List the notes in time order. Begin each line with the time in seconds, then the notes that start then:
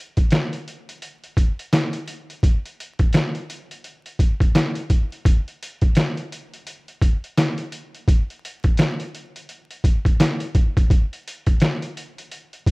0.17 kick, closed hi-hat
0.30 snare, closed hi-hat
0.53 closed hi-hat
0.68 closed hi-hat
0.89 closed hi-hat
1.02 closed hi-hat
1.24 closed hi-hat
1.37 kick, closed hi-hat
1.59 closed hi-hat
1.73 snare, closed hi-hat
1.93 closed hi-hat
2.08 closed hi-hat
2.30 closed hi-hat
2.43 kick, closed hi-hat
2.66 closed hi-hat
2.80 closed hi-hat
2.99 kick, closed hi-hat
3.13 snare, closed hi-hat
3.35 closed hi-hat
3.50 closed hi-hat
3.71 closed hi-hat
3.84 closed hi-hat
4.06 closed hi-hat
4.19 kick, closed hi-hat
4.40 kick, closed hi-hat
4.55 snare, closed hi-hat
4.75 closed hi-hat
4.90 kick, closed hi-hat
5.12 closed hi-hat
5.25 kick, closed hi-hat
5.48 closed hi-hat
5.63 closed hi-hat
5.81 kick, closed hi-hat
5.95 snare, closed hi-hat
6.17 closed hi-hat
6.32 closed hi-hat
6.54 closed hi-hat
6.67 closed hi-hat
6.88 closed hi-hat
7.02 kick, closed hi-hat
7.24 closed hi-hat
7.37 snare, closed hi-hat
7.58 closed hi-hat
7.72 closed hi-hat
7.95 closed hi-hat
8.08 kick, closed hi-hat
8.30 closed hi-hat
8.45 closed hi-hat
8.64 kick, closed hi-hat
8.77 snare, closed hi-hat
9.00 closed hi-hat
9.15 closed hi-hat
9.36 closed hi-hat
9.49 closed hi-hat
9.71 closed hi-hat
9.84 kick, closed hi-hat
10.05 kick, closed hi-hat
10.20 snare, closed hi-hat
10.40 closed hi-hat
10.55 kick, closed hi-hat
10.77 kick, closed hi-hat
10.90 kick, closed hi-hat
11.13 closed hi-hat
11.28 closed hi-hat
11.46 kick, closed hi-hat
11.60 snare, closed hi-hat
11.82 closed hi-hat
11.97 closed hi-hat
12.18 closed hi-hat
12.32 closed hi-hat
12.53 closed hi-hat
12.66 kick, closed hi-hat